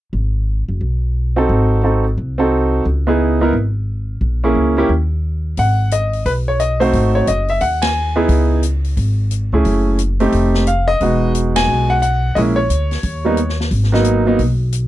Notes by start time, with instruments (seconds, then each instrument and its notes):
0.13 upright bass G#1
0.69 upright bass F#1
0.81 upright bass B1
1.36 grand piano C4 D#4 F#4 A4
1.49 upright bass G#1
1.83 grand piano C4 D#4 F#4 A4
2.17 upright bass C2
2.38 grand piano C4 D#4 F#4 A4
2.85 upright bass C#2
3.07 grand piano B3 D#4 E4 G#4
3.41 grand piano B3 D#4 E4 A#4
3.53 upright bass G#1
4.21 upright bass A#1
4.44 grand piano A#3 C#4 E4 G#4
4.55 upright bass C#2
4.77 grand piano A#3 C#4 E4 G4
4.89 upright bass D#2
5.57 upright bass G#1, grand piano F#5, kick, open hi-hat
5.91 grand piano D#5, closed hi-hat
6.13 open hi-hat
6.25 upright bass B1, grand piano B4, kick, open hi-hat
6.48 grand piano C#5
6.60 grand piano D#5, closed hi-hat
6.80 grand piano A3 C4 D#4 F#4 C5, open hi-hat
6.93 upright bass G#1, kick, open hi-hat
7.15 grand piano C#5
7.27 upright bass F#1, grand piano D#5, closed hi-hat
7.48 grand piano E5, open hi-hat
7.61 upright bass D#2, grand piano F#5, kick, open hi-hat
7.82 grand piano G#5, snare, ride
8.16 grand piano B3 D#4 E4 G#4
8.28 upright bass C#2, kick, open hi-hat
8.63 closed hi-hat
8.84 open hi-hat
8.97 upright bass G#1, kick, open hi-hat
9.31 closed hi-hat
9.52 upright bass C#2, grand piano A3 C#4 E4 G#4
9.65 upright bass F#1, kick, open hi-hat
9.98 closed hi-hat
10.20 grand piano A3 C4 D#4 G4, open hi-hat
10.32 upright bass F1, kick, open hi-hat
10.54 snare
10.67 grand piano F5, closed hi-hat
10.88 grand piano D#5
11.01 upright bass E1, grand piano G#3 B3 D#4 F#4, kick, open hi-hat
11.35 closed hi-hat
11.56 grand piano G#5, snare, ride
11.68 upright bass B1
11.90 grand piano F#5
12.02 grand piano F#5, closed hi-hat
12.35 upright bass A#1, grand piano G#3 A#3 C#4 E4 D#5, kick, open hi-hat
12.56 grand piano C#5
12.70 upright bass D2, closed hi-hat
12.91 snare, open hi-hat
13.03 upright bass D#2, kick, open hi-hat
13.25 grand piano G3 A#3 B3 D#4
13.37 closed hi-hat
13.49 snare
13.60 snare
13.71 upright bass G#1, kick, open hi-hat
13.83 snare
13.92 grand piano F#3 A#3 B3 D#4, snare
14.04 closed hi-hat
14.27 grand piano F#3 A#3 B3 D#4
14.39 upright bass B1, kick, open hi-hat
14.72 closed hi-hat